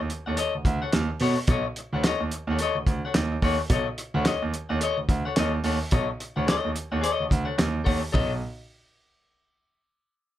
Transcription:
0.10 muted clean electric guitar stroke, closed hi-hat
0.26 grand piano D#2, clean electric guitar A4 C#5 F#5
0.37 clean electric guitar A4 C#5 D#5, closed hi-hat
0.55 grand piano D2
0.65 grand piano D2, muted clean electric guitar stroke, kick, closed hi-hat
0.82 clean electric guitar A4 C#5 F#5
0.93 grand piano D#2, snare, clap, closed hi-hat
1.09 muted clean electric guitar stroke
1.20 grand piano B2, clean electric guitar A4 C#5 F#5, open hi-hat
1.38 muted clean electric guitar stroke
1.47 grand piano B1, clean electric guitar A4 C#5 D#5, kick, closed hi-hat
1.67 muted clean electric guitar stroke
1.76 muted clean electric guitar stroke, closed hi-hat
1.93 grand piano D2, clean electric guitar A4 C#5 F#5
2.04 grand piano D#2, clean electric guitar A4 C#5 D#5, snare, clap, closed hi-hat
2.20 grand piano D#2
2.32 muted clean electric guitar stroke, closed hi-hat
2.47 grand piano D#2, clean electric guitar C#5 F#5
2.52 clean electric guitar A4
2.59 clean electric guitar A4 C#5 D#5, closed hi-hat
2.75 grand piano D2
2.86 grand piano D2, muted clean electric guitar stroke, kick, closed hi-hat
3.05 clean electric guitar A4 C#5 F#5
3.14 grand piano D#2, snare, clap, closed hi-hat
3.32 muted clean electric guitar stroke
3.42 grand piano D#2, clean electric guitar A4 C#5 F#5, kick, open hi-hat
3.60 muted clean electric guitar stroke
3.70 grand piano B1, clean electric guitar A4 C#5 D#5, kick, closed hi-hat
3.88 muted clean electric guitar stroke
3.98 muted clean electric guitar stroke, closed hi-hat
4.14 grand piano D2, clean electric guitar A4 C#5 F#5
4.25 grand piano D#2, clean electric guitar A4 C#5 D#5, snare, clap, closed hi-hat
4.42 grand piano D#2
4.53 muted clean electric guitar stroke, closed hi-hat
4.69 grand piano D#2, clean electric guitar A4 C#5 F#5
4.81 clean electric guitar A4 C#5 D#5, closed hi-hat
4.97 grand piano D2
5.09 grand piano D2, muted clean electric guitar stroke, kick, closed hi-hat
5.25 clean electric guitar A4 C#5 F#5
5.36 grand piano D#2, clean electric guitar A4 C#5 D#5, snare, clap, closed hi-hat
5.54 muted clean electric guitar stroke
5.64 grand piano D#2, clean electric guitar A4 C#5 F#5, open hi-hat
5.81 muted clean electric guitar stroke
5.91 grand piano B1, clean electric guitar A4 C#5 D#5, kick, closed hi-hat
6.08 muted clean electric guitar stroke
6.20 muted clean electric guitar stroke, closed hi-hat
6.36 grand piano D2, clean electric guitar A4 C#5 F#5
6.47 grand piano D#2, clean electric guitar A4 C#5 D#5, snare, clap, closed hi-hat
6.65 grand piano D#2
6.75 muted clean electric guitar stroke, closed hi-hat
6.92 grand piano D#2, clean electric guitar A4 C#5 F#5
7.01 clean electric guitar A4 C#5 D#5, closed hi-hat
7.20 grand piano D2
7.29 grand piano D2, muted clean electric guitar stroke, kick, closed hi-hat
7.45 clean electric guitar A4 C#5 F#5
7.58 grand piano D#2, snare, clap, closed hi-hat
7.74 muted clean electric guitar stroke
7.84 grand piano D#2, clean electric guitar A4 C#5 F#5, kick, open hi-hat
8.01 muted clean electric guitar stroke
8.12 grand piano B1, clean electric guitar A4 C#5 D#5, kick, floor tom, ride bell

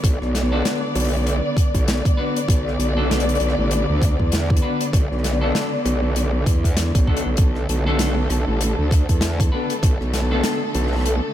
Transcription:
Already playing: string section D3 B3 D5
0.04 wobble bass B1, kick, closed hi-hat
0.22 wobble bass B1, cross-stick
0.35 snare, closed hi-hat
0.52 clean electric guitar B3 D4 F#4 A4
0.65 snare, closed hi-hat
0.95 wobble bass B1, closed hi-hat
1.00 closed hi-hat
1.05 closed hi-hat
1.09 closed hi-hat
1.13 closed hi-hat
1.16 closed hi-hat
1.19 closed hi-hat
1.23 closed hi-hat
1.27 closed hi-hat
1.57 kick, closed hi-hat
1.74 wobble bass B1, kick, closed hi-hat
1.88 snare, closed hi-hat
2.05 kick, closed hi-hat
2.17 clean electric guitar B3 D4 F#4 B4
2.36 closed hi-hat
2.48 wobble bass B1, kick, closed hi-hat
2.68 cross-stick
2.79 wobble bass B1, closed hi-hat
2.97 clean electric guitar B3 D4 F#4 A4
3.11 snare, closed hi-hat
3.20 closed hi-hat
3.29 closed hi-hat
3.35 closed hi-hat
3.40 wobble bass B1, closed hi-hat
3.49 cross-stick
3.58 wobble bass A1
3.71 closed hi-hat
3.90 wobble bass D2
4.02 kick, closed hi-hat
4.19 wobble bass E2, kick
4.32 snare, closed hi-hat
4.50 kick
4.57 closed hi-hat
4.62 clean electric guitar B3 D4 F#4 B4
4.81 closed hi-hat
4.93 wobble bass B1, kick, closed hi-hat
5.12 wobble bass B1, cross-stick
5.18 cross-stick
5.24 cross-stick, snare, closed hi-hat
5.33 cross-stick
5.41 clean electric guitar B3 D4 F#4 A4
5.55 snare, closed hi-hat
5.85 wobble bass B1, cross-stick, closed hi-hat
6.16 closed hi-hat
6.46 wobble bass E2, kick, closed hi-hat
6.64 kick, closed hi-hat
6.77 snare, closed hi-hat
6.95 wobble bass B1, kick, closed hi-hat
7.07 clean electric guitar B3 D4 F#4 A4, kick
7.17 closed hi-hat
7.26 wobble bass B1
7.37 wobble bass B1, string section A3 A4, kick, closed hi-hat
7.55 cross-stick
7.69 wobble bass B1, closed hi-hat
7.87 clean electric guitar B3 D4 F#4 A4
7.99 snare, closed hi-hat
8.30 wobble bass B1, cross-stick, closed hi-hat
8.48 wobble bass A1
8.61 closed hi-hat
8.78 wobble bass D2
8.91 kick, closed hi-hat
9.09 wobble bass E2, kick, closed hi-hat
9.21 snare, closed hi-hat
9.40 kick, closed hi-hat
9.52 clean electric guitar B3 D4 F#4 B4
9.70 closed hi-hat
9.83 wobble bass B1, kick, closed hi-hat
10.01 wobble bass B1, cross-stick
10.14 snare, closed hi-hat
10.31 clean electric guitar B3 D4 F#4 A4
10.44 snare, closed hi-hat
10.75 wobble bass B1, closed hi-hat
10.79 cross-stick
10.83 cross-stick
10.87 cross-stick
10.92 cross-stick
10.95 cross-stick
10.98 cross-stick
11.01 cross-stick
11.06 closed hi-hat

